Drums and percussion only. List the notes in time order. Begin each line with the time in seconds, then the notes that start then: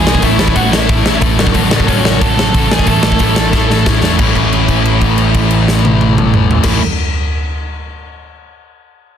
0.07 snare
0.15 kick
0.22 kick, open hi-hat
0.39 snare
0.48 kick
0.56 kick, open hi-hat
0.73 snare
0.89 kick, open hi-hat
1.06 snare
1.22 kick, open hi-hat
1.39 snare
1.47 kick
1.54 kick, open hi-hat
1.71 snare
1.80 kick
1.88 kick, open hi-hat
2.05 snare
2.21 kick, open hi-hat
2.39 snare
2.55 kick, open hi-hat
2.71 snare
2.79 kick
2.87 kick, open hi-hat
3.03 snare
3.12 kick
3.19 kick, open hi-hat
3.36 snare
3.53 kick, snare
3.70 snare
3.86 kick, snare
4.04 snare
4.19 kick, crash
4.35 kick, crash
4.53 crash
4.68 kick, crash
4.85 crash
5.01 kick, crash
5.18 crash
5.34 kick, crash
5.51 crash
5.68 snare
5.85 high tom
6.01 high tom
6.18 mid tom
6.34 mid tom
6.51 floor tom
6.63 kick, snare, crash